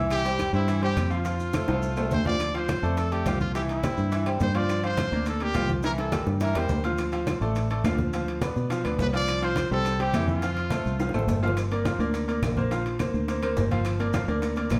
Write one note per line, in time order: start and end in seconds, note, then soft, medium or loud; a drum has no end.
0.00 0.48 C2 medium
0.00 0.20 E3 medium
0.00 0.20 E4 medium
0.00 0.20 E5 medium
0.11 0.51 G4 loud
0.11 high bongo medium
0.11 high conga soft
0.11 high timbale medium
0.11 claves medium
0.11 maracas medium
0.25 0.49 G3 medium
0.25 0.49 G4 medium
0.25 0.49 C5 medium
0.25 high conga soft
0.25 high timbale medium
0.25 maracas medium
0.39 high bongo medium
0.39 high conga medium
0.39 high timbale medium
0.39 claves medium
0.39 maracas medium
0.53 0.93 G2 loud
0.53 0.65 G3 medium
0.53 0.81 E4 loud
0.53 0.65 G4 medium
0.53 0.66 C5 medium
0.53 maracas soft
0.68 0.80 E3 medium
0.68 0.80 E4 medium
0.68 0.80 E5 medium
0.68 high bongo medium
0.68 high conga soft
0.68 high timbale medium
0.68 maracas medium
0.82 1.06 G3 medium
0.82 1.06 G4 medium
0.82 1.10 G4 loud
0.82 1.06 C5 medium
0.82 high conga soft
0.82 high timbale medium
0.97 1.63 F2 medium
0.97 high bongo medium
0.97 low bongo medium
0.97 high conga medium
0.97 high timbale loud
0.97 claves medium
0.97 maracas medium
1.10 1.22 F3 medium
1.10 1.22 F4 medium
1.10 2.08 F4 medium
1.10 1.22 F5 medium
1.10 maracas soft
1.25 1.49 F3 medium
1.25 1.49 F4 medium
1.25 1.49 F5 medium
1.25 high bongo medium
1.25 high conga soft
1.25 high timbale medium
1.25 maracas medium
1.40 high bongo soft
1.40 high conga soft
1.40 maracas medium
1.53 1.66 A3 medium
1.53 1.66 A4 medium
1.53 1.66 C5 medium
1.53 high bongo medium
1.53 high conga medium
1.53 high timbale medium
1.53 claves medium
1.53 maracas medium
1.68 2.09 C2 medium
1.68 1.92 A3 medium
1.68 1.92 A4 medium
1.68 1.92 C5 medium
1.68 high bongo loud
1.68 high conga soft
1.68 high timbale loud
1.68 maracas soft
1.82 high conga soft
1.82 maracas medium
1.97 2.20 A3 medium
1.97 2.21 A4 medium
1.97 2.21 C5 medium
1.97 high conga soft
1.97 low timbale loud
1.97 claves medium
1.97 maracas medium
2.11 2.78 D2 medium
2.11 2.26 C5 loud
2.11 low bongo medium
2.11 high conga medium
2.11 low timbale loud
2.11 maracas medium
2.25 2.37 F3 medium
2.25 2.37 F4 medium
2.25 2.53 D5 loud
2.25 2.38 F5 medium
2.25 low bongo medium
2.25 high conga medium
2.25 low timbale medium
2.25 maracas soft
2.40 high bongo medium
2.40 high conga soft
2.40 high timbale medium
2.40 claves medium
2.40 maracas medium
2.54 2.78 F3 medium
2.54 2.78 F4 medium
2.54 3.00 C5 medium
2.54 2.78 F5 medium
2.54 high bongo soft
2.54 high conga soft
2.54 high timbale medium
2.54 maracas soft
2.68 high bongo medium
2.68 high conga loud
2.68 high timbale medium
2.68 low timbale medium
2.68 claves medium
2.68 maracas medium
2.83 3.23 F2 medium
2.83 3.07 A3 medium
2.83 3.06 A4 medium
2.83 3.07 D5 medium
2.83 high conga soft
2.83 maracas soft
2.97 3.14 A4 medium
2.97 high bongo medium
2.97 high conga soft
2.97 high timbale medium
2.97 maracas medium
3.12 3.23 A3 medium
3.12 3.40 G4 loud
3.12 3.23 A4 medium
3.12 3.24 D5 medium
3.12 high bongo soft
3.12 high conga soft
3.12 high timbale medium
3.12 maracas soft
3.26 3.92 C2 medium
3.26 3.50 F3 medium
3.26 3.50 F4 medium
3.26 3.50 F5 medium
3.26 high bongo medium
3.26 low bongo medium
3.26 high conga medium
3.26 high timbale medium
3.26 low timbale medium
3.26 claves medium
3.26 maracas medium
3.41 3.54 F4 medium
3.41 high bongo soft
3.41 high conga medium
3.41 maracas soft
3.55 3.78 E3 medium
3.55 3.79 E4 medium
3.55 3.62 G4 medium
3.55 3.79 E5 medium
3.55 high bongo medium
3.55 high conga soft
3.55 high timbale medium
3.55 maracas medium
3.69 4.23 E4 medium
3.69 high bongo soft
3.69 high conga soft
3.69 high timbale medium
3.69 maracas soft
3.83 4.07 G3 medium
3.83 4.07 G4 medium
3.83 4.07 C5 medium
3.83 high bongo medium
3.83 high conga medium
3.83 high timbale medium
3.83 low timbale medium
3.83 claves medium
3.83 maracas medium
3.97 4.38 G2 medium
3.97 high bongo soft
3.97 maracas soft
4.12 4.24 E3 medium
4.12 4.24 E4 medium
4.12 4.24 E5 medium
4.12 high bongo medium
4.12 high conga soft
4.12 high timbale medium
4.12 maracas medium
4.26 4.50 G3 medium
4.26 4.50 G4 medium
4.26 4.50 C5 medium
4.26 high conga soft
4.26 high timbale medium
4.26 claves medium
4.26 maracas soft
4.40 5.07 G2 medium
4.40 4.58 C5 loud
4.40 high bongo medium
4.40 low bongo medium
4.40 high conga medium
4.40 low timbale medium
4.40 maracas medium
4.54 4.78 F3 medium
4.54 4.79 F4 medium
4.54 4.84 D5 loud
4.54 4.79 F5 medium
4.54 high bongo soft
4.54 high timbale medium
4.54 maracas soft
4.69 high bongo medium
4.69 high conga soft
4.69 high timbale medium
4.69 claves medium
4.69 maracas medium
4.83 5.07 F3 medium
4.83 5.07 F4 medium
4.83 5.24 C5 medium
4.83 5.07 F5 medium
4.83 high bongo soft
4.83 high conga soft
4.83 high timbale medium
4.83 maracas soft
4.97 high bongo medium
4.97 high conga loud
4.97 high timbale medium
4.97 low timbale medium
4.97 claves medium
4.97 maracas medium
5.12 5.52 D2 medium
5.12 5.36 A#3 medium
5.12 5.36 A#4 medium
5.12 5.36 D5 medium
5.12 high conga soft
5.12 maracas soft
5.26 5.44 A4 medium
5.26 high bongo medium
5.26 high conga soft
5.26 high timbale medium
5.26 maracas medium
5.40 5.53 A#3 medium
5.40 5.71 G4 loud
5.40 5.53 A#4 medium
5.40 5.53 D5 medium
5.40 high bongo soft
5.40 high conga soft
5.40 high timbale medium
5.40 maracas soft
5.54 6.22 C2 medium
5.54 5.78 F3 medium
5.54 5.78 F4 medium
5.54 5.79 F5 medium
5.54 high bongo medium
5.54 low bongo medium
5.54 high conga medium
5.54 high timbale medium
5.54 low timbale medium
5.54 claves medium
5.54 maracas medium
5.69 high bongo soft
5.69 high conga medium
5.69 maracas soft
5.83 6.07 E3 medium
5.83 6.07 E4 medium
5.83 5.92 A#4 loud
5.83 6.08 E5 medium
5.83 high bongo medium
5.83 high conga soft
5.83 high timbale medium
5.83 maracas medium
5.97 6.25 A4 medium
5.97 high bongo medium
5.97 high conga soft
5.97 high timbale medium
5.97 maracas soft
6.12 6.36 G3 medium
6.12 6.36 G4 medium
6.12 6.36 A#4 medium
6.12 low bongo medium
6.12 high conga medium
6.12 high timbale medium
6.12 low timbale medium
6.12 claves medium
6.12 maracas medium
6.26 6.53 G2 medium
6.26 low bongo medium
6.26 maracas soft
6.40 6.53 E3 medium
6.40 6.53 E4 medium
6.40 6.59 A#4 medium
6.40 6.54 E5 medium
6.40 low bongo loud
6.40 high conga soft
6.40 high timbale medium
6.40 maracas medium
6.55 6.69 E2 medium
6.55 6.79 G3 medium
6.55 6.80 G4 medium
6.55 6.79 A#4 medium
6.55 6.85 C5 medium
6.55 low bongo medium
6.55 high conga soft
6.55 high timbale medium
6.55 claves medium
6.55 maracas soft
6.69 7.36 D2 medium
6.69 high conga medium
6.69 low timbale medium
6.69 maracas medium
6.84 7.08 F3 medium
6.84 7.08 F4 medium
6.84 7.08 F5 medium
6.84 low bongo medium
6.84 high timbale medium
6.84 maracas soft
6.98 high bongo medium
6.98 high conga soft
6.98 high timbale medium
6.98 claves medium
6.98 maracas medium
7.12 7.36 F3 medium
7.12 7.36 F4 medium
7.12 7.36 F5 medium
7.12 high bongo soft
7.12 high conga soft
7.12 high timbale medium
7.12 maracas soft
7.27 high bongo medium
7.27 high conga medium
7.27 high timbale medium
7.27 low timbale medium
7.27 claves medium
7.27 maracas medium
7.41 7.81 A1 loud
7.41 7.65 A3 medium
7.41 7.65 A4 medium
7.41 7.65 D5 medium
7.41 high conga soft
7.41 maracas soft
7.55 high bongo medium
7.55 high conga soft
7.55 high timbale medium
7.55 maracas medium
7.70 7.82 A3 medium
7.70 7.82 A4 medium
7.70 7.82 D5 medium
7.70 high bongo soft
7.70 high conga soft
7.70 high timbale medium
7.70 maracas soft
7.84 8.51 D2 loud
7.84 8.08 F3 medium
7.84 8.09 F4 medium
7.84 8.09 F5 medium
7.84 high bongo medium
7.84 low bongo medium
7.84 high conga medium
7.84 high timbale medium
7.84 low timbale medium
7.84 claves medium
7.84 maracas medium
7.98 high bongo soft
7.98 high conga medium
7.98 maracas soft
8.13 8.37 F3 medium
8.13 8.37 F4 medium
8.13 8.37 F5 medium
8.13 high bongo medium
8.13 high conga soft
8.13 high timbale medium
8.13 maracas medium
8.27 high bongo soft
8.27 high conga soft
8.27 high timbale medium
8.27 maracas soft
8.41 8.66 B3 medium
8.41 8.66 B4 medium
8.41 8.66 D5 medium
8.41 high bongo medium
8.41 high conga medium
8.41 high timbale medium
8.41 low timbale medium
8.41 claves medium
8.41 maracas medium
8.56 8.83 B2 medium
8.56 high bongo soft
8.56 maracas soft
8.70 8.82 F3 medium
8.70 8.82 F4 medium
8.70 8.82 F5 medium
8.70 high bongo medium
8.70 high conga soft
8.70 high timbale medium
8.70 maracas medium
8.84 8.98 D2 medium
8.84 9.08 B3 medium
8.84 9.08 B4 medium
8.84 9.08 D5 medium
8.84 high conga soft
8.84 high timbale medium
8.84 claves medium
8.84 maracas soft
8.99 9.66 C2 loud
8.99 9.08 B4 loud
8.99 high bongo medium
8.99 low bongo medium
8.99 high conga medium
8.99 low timbale medium
8.99 maracas medium
9.13 9.37 F3 medium
9.13 9.37 F4 medium
9.13 9.46 D5 loud
9.13 9.37 F5 medium
9.13 high bongo soft
9.13 high timbale medium
9.13 maracas soft
9.27 high bongo medium
9.27 high conga soft
9.27 high timbale loud
9.27 claves medium
9.27 maracas medium
9.41 9.66 F3 medium
9.41 9.66 F4 medium
9.41 9.72 C5 loud
9.41 9.66 F5 medium
9.41 high bongo soft
9.41 high conga soft
9.41 high timbale medium
9.41 maracas soft
9.56 high bongo medium
9.56 high conga medium
9.56 high timbale medium
9.56 low timbale medium
9.56 claves medium
9.56 maracas medium
9.70 10.11 C2 medium
9.70 9.95 G3 medium
9.70 9.95 G4 medium
9.70 10.03 A4 loud
9.70 9.95 C5 medium
9.70 high conga soft
9.70 maracas soft
9.85 high bongo medium
9.85 high conga soft
9.85 high timbale medium
9.85 maracas medium
9.99 10.11 G3 medium
9.99 10.11 G4 medium
9.99 10.29 G4 medium
9.99 10.12 C5 medium
9.99 high bongo soft
9.99 high conga soft
9.99 high timbale medium
9.99 maracas soft
10.13 10.80 F2 medium
10.13 10.37 E3 medium
10.13 10.38 E4 medium
10.13 10.38 E5 medium
10.13 high bongo medium
10.13 low bongo medium
10.13 high conga medium
10.13 high timbale loud
10.13 low timbale medium
10.13 claves medium
10.13 maracas medium
10.28 11.25 F4 medium
10.28 high bongo soft
10.28 high conga medium
10.28 maracas soft
10.42 10.66 F3 medium
10.42 10.66 F4 medium
10.42 10.66 F5 medium
10.42 high bongo medium
10.42 high timbale medium
10.42 maracas medium
10.56 high bongo soft
10.56 high conga soft
10.56 high timbale medium
10.56 maracas soft
10.70 10.95 A3 medium
10.70 10.95 A4 medium
10.70 10.95 C5 medium
10.70 high bongo medium
10.70 high conga medium
10.70 high timbale medium
10.70 low timbale medium
10.70 claves medium
10.70 maracas medium
10.85 11.12 C2 medium
10.85 high bongo soft
10.85 maracas soft
10.99 11.11 F3 medium
10.99 11.11 F4 medium
10.99 11.12 F5 medium
10.99 high bongo medium
10.99 high conga soft
10.99 high timbale medium
10.99 maracas medium
11.09 high bongo medium
11.13 11.27 A1 medium
11.13 11.37 A3 medium
11.13 11.38 A4 medium
11.13 11.38 C5 medium
11.13 high conga soft
11.13 low timbale medium
11.13 claves medium
11.13 maracas soft
11.19 low bongo medium
11.27 11.94 G1 medium
11.27 low bongo medium
11.27 high conga medium
11.27 low timbale medium
11.27 maracas medium
11.43 11.54 F3 medium
11.43 11.54 F4 medium
11.43 11.55 F5 medium
11.43 low timbale medium
11.43 maracas soft
11.48 low bongo medium
11.57 high bongo medium
11.57 high conga soft
11.57 high timbale medium
11.57 claves medium
11.57 maracas medium
11.71 11.83 A#3 medium
11.71 11.83 A#4 medium
11.71 11.83 D5 medium
11.71 high bongo soft
11.71 high conga soft
11.71 high timbale medium
11.71 maracas soft
11.85 11.97 F3 medium
11.85 11.97 F4 medium
11.85 11.98 F5 medium
11.85 high bongo medium
11.85 high conga medium
11.85 high timbale medium
11.85 low timbale medium
11.85 claves medium
11.85 maracas medium
11.99 12.39 D2 medium
11.99 12.23 A#3 medium
11.99 12.23 A#4 medium
11.99 12.23 D5 medium
11.99 high conga soft
11.99 maracas soft
12.14 high bongo medium
12.14 high conga soft
12.14 high timbale medium
12.14 maracas medium
12.28 12.52 A#3 medium
12.28 12.52 A#4 medium
12.28 12.52 D5 medium
12.28 high bongo soft
12.28 high conga soft
12.28 high timbale medium
12.28 maracas soft
12.42 13.09 A#1 medium
12.42 high bongo medium
12.42 low bongo medium
12.42 high conga medium
12.42 high timbale loud
12.42 low timbale medium
12.42 claves medium
12.42 maracas medium
12.57 12.69 A#3 medium
12.57 12.69 A#4 medium
12.57 12.69 C5 medium
12.57 high bongo soft
12.57 high conga medium
12.57 maracas soft
12.71 12.95 F3 medium
12.71 12.95 F4 medium
12.71 12.95 F5 medium
12.71 high bongo medium
12.71 high conga soft
12.71 high timbale medium
12.71 maracas medium
12.86 high bongo soft
12.86 high conga soft
12.86 high timbale medium
12.86 maracas soft
12.99 13.23 A#3 medium
12.99 13.24 A#4 medium
12.99 13.24 C5 medium
12.99 high bongo medium
12.99 high conga medium
12.99 high timbale medium
12.99 low timbale medium
12.99 claves medium
12.99 maracas medium
13.14 13.54 D2 loud
13.14 high bongo soft
13.14 maracas soft
13.28 13.40 A#3 medium
13.28 13.40 A#4 medium
13.28 13.40 C5 medium
13.28 high bongo medium
13.28 high conga soft
13.28 high timbale medium
13.28 maracas medium
13.43 13.66 A#3 medium
13.43 13.66 A#4 medium
13.43 13.67 C5 medium
13.43 high conga soft
13.43 high timbale loud
13.43 claves medium
13.43 maracas soft
13.57 14.23 G1 loud
13.57 high bongo medium
13.57 low bongo medium
13.57 high conga medium
13.57 low timbale medium
13.57 maracas medium
13.71 13.95 F3 medium
13.71 13.95 F4 medium
13.71 13.95 F5 medium
13.71 high bongo soft
13.71 high conga medium
13.71 high timbale medium
13.71 maracas soft
13.85 high bongo medium
13.85 high conga soft
13.85 high timbale loud
13.85 claves medium
13.85 maracas medium
13.99 14.12 A#3 medium
13.99 14.12 A#4 medium
13.99 14.12 D5 medium
13.99 high bongo soft
13.99 high conga soft
13.99 high timbale medium
13.99 maracas soft
14.13 14.26 F3 medium
14.13 14.26 F4 medium
14.13 14.26 F5 medium
14.13 high bongo medium
14.13 high conga loud
14.13 high timbale medium
14.13 low timbale medium
14.13 claves medium
14.13 maracas medium
14.28 14.68 D2 loud
14.28 14.52 A#3 medium
14.28 14.52 A#4 medium
14.28 14.52 D5 medium
14.28 high conga soft
14.28 maracas soft
14.42 high bongo medium
14.42 high conga soft
14.42 high timbale medium
14.42 maracas medium
14.56 14.80 A#3 medium
14.56 14.80 A#4 medium
14.56 14.80 D5 medium
14.56 high bongo soft
14.56 high conga soft
14.56 high timbale medium
14.56 maracas soft
14.70 14.80 A#1 medium
14.70 high bongo medium
14.70 low bongo medium
14.70 high conga medium
14.70 high timbale loud
14.70 low timbale medium
14.70 claves medium
14.70 maracas medium